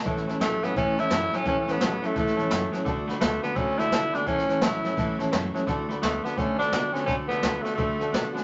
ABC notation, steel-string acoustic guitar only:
X:1
M:4/4
L:1/8
Q:"Swing" 1/4=171
K:A
V:1 name="Steel-string acoustic guitar"
[A,,E,A,CE] [A,CE] [E,A,CE] [A,CE] [A,,E,A,CE] [A,CE] [E,CE] [A,CE] | [A,,E,A,CE] [A,CE] [E,A,CE] [A,CE] [A,,E,A,CE] [A,CE] [E,A,CE] [A,CE] | [D,A,DF] [A,DF] [D,A,DF] [A,DF] [D,A,DF] [A,DF] [D,A,DF] [A,DF] | [A,,E,A,CE] [A,CE] [E,CE] [A,CE] [A,,E,A,CE] [A,CE] [E,A,CE] [A,CE] |
[D,A,DF] [A,DF] [D,A,DF] [A,DF] [D,A,DF] [A,DF] [D,A,DF] [A,DF] | [D,A,DF] [A,DF] [D,A,DF] [A,DF] [D,A,DF] [A,DF] [D,A,DF] [A,DF] |]